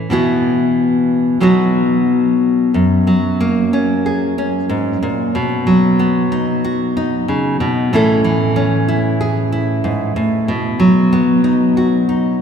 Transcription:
0.10 1.39 B2 medium
0.10 1.40 E3 soft
0.10 1.37 B3 soft
0.10 1.37 E4 soft
0.10 1.37 F#4 medium
1.40 2.74 B2 medium
1.40 2.71 F#3 soft
1.40 2.71 B3 medium
1.40 2.71 D#4 soft
1.40 2.72 F#4 medium
2.74 4.69 F#2 medium
3.07 5.31 F#3 medium
3.40 5.31 A#3 medium
3.73 4.37 C#4 medium
4.06 5.31 G#4 soft
4.38 5.31 C#4 medium
4.69 5.02 G#2 medium
5.03 5.35 A#2 medium
5.35 7.28 B2 medium
5.67 7.88 F#3 medium
5.99 7.88 B3 medium
6.32 6.96 D#4 medium
6.64 7.89 F#4 medium
6.97 7.89 D#4 medium
7.28 7.60 C#3 medium
7.60 7.92 B2 medium
7.93 9.84 A2 medium
7.93 8.23 E3 medium
7.93 8.55 C#4 medium
7.93 8.87 E4 medium
7.93 9.20 A4 medium
8.24 10.48 E3 medium
8.56 10.44 C#4 medium
8.88 9.51 E4 medium
9.21 10.44 G#4 medium
9.52 10.44 E4 medium
9.84 10.16 G#2 medium
10.16 10.48 A2 medium
10.48 12.42 B2 medium
10.80 12.42 F#3 medium
11.13 12.41 B3 medium
11.44 12.08 D#4 medium
11.77 12.42 F#4 medium
12.09 12.42 D#4 medium

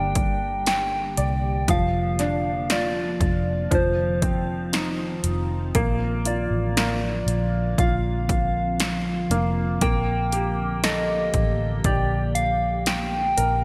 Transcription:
0.00 1.13 G1 medium
0.00 3.67 D3 medium
0.00 1.64 G3 medium
0.00 1.65 A#3 medium
0.00 1.70 D4 medium
0.00 1.65 G4 medium
0.00 0.62 A#4 medium
0.00 0.63 G5 loud
0.15 kick medium
0.15 closed hi-hat medium
0.67 1.65 G5 medium
0.67 snare medium
0.67 closed hi-hat medium
1.17 1.65 C2 medium
1.17 1.67 D5 soft
1.17 closed hi-hat medium
1.68 3.17 F1 loud
1.68 3.70 F3 medium
1.68 3.68 F3 medium
1.68 3.70 A#3 medium
1.68 3.70 F4 medium
1.68 2.73 F5 loud
1.68 kick loud
1.68 closed hi-hat medium
2.19 3.68 D4 medium
2.19 snare soft
2.19 closed hi-hat medium
2.70 3.69 F4 medium
2.70 3.73 D5 medium
2.70 snare loud
2.70 closed hi-hat medium
3.21 3.68 F1 medium
3.21 kick medium
3.21 closed hi-hat medium
3.71 5.20 F1 medium
3.71 5.73 D#3 medium
3.71 5.71 F3 medium
3.71 13.64 F3 medium
3.71 5.73 C4 medium
3.71 9.78 F4 medium
3.71 5.22 C5 medium
3.71 kick medium
3.71 closed hi-hat medium
4.22 5.71 C4 medium
4.22 kick medium
4.22 closed hi-hat medium
4.73 5.72 D#4 medium
4.73 snare loud
4.73 closed hi-hat medium
5.24 5.71 F1 medium
5.24 closed hi-hat medium
5.75 6.47 A#1 medium
5.75 9.78 D3 medium
5.75 6.76 A#3 medium
5.75 7.77 A#3 medium
5.75 kick loud
5.75 closed hi-hat medium
6.25 7.77 F4 soft
6.25 7.81 D5 loud
6.25 closed hi-hat medium
6.51 7.23 A1 medium
6.77 8.76 A#3 medium
6.77 snare loud
6.77 closed hi-hat medium
7.27 7.74 A#1 medium
7.27 closed hi-hat medium
7.77 9.27 A#1 loud
7.77 9.79 C4 medium
7.77 9.78 F4 medium
7.77 9.84 F5 loud
7.77 kick medium
7.77 closed hi-hat medium
8.29 kick medium
8.29 closed hi-hat medium
8.80 snare loud
8.80 closed hi-hat medium
9.30 9.78 F1 medium
9.30 9.80 A#3 medium
9.30 closed hi-hat medium
9.81 11.30 A#1 loud
9.81 13.64 D3 medium
9.81 13.64 A#3 medium
9.81 13.64 G4 medium
9.81 10.85 G5 loud
9.81 kick loud
9.81 closed hi-hat medium
10.32 11.83 G4 medium
10.32 closed hi-hat medium
10.84 12.83 A4 soft
10.84 11.85 D#5 medium
10.84 snare loud
10.84 closed hi-hat medium
11.34 11.81 A1 medium
11.34 kick medium
11.34 closed hi-hat medium
11.84 13.33 A#1 medium
11.84 13.64 G4 medium
11.84 12.33 D5 medium
11.84 kick medium
11.84 closed hi-hat medium
12.35 12.83 F5 loud
12.35 closed hi-hat medium
12.86 13.64 G5 loud
12.86 snare loud
12.86 closed hi-hat medium
13.37 13.64 A#1 loud
13.37 13.64 A#4 soft
13.37 closed hi-hat medium

